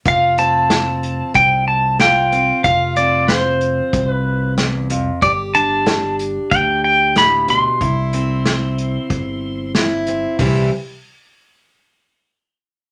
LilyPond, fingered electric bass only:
\new Staff \with { instrumentName = "Fingered electric bass" } { \clef bass \time 4/4 \key c \major \tempo 4 = 93 f,,2 c,2 | f,,2 c,2 | g,,2 d,2 | c,2 g,,2 |
c,8 r2. r8 | }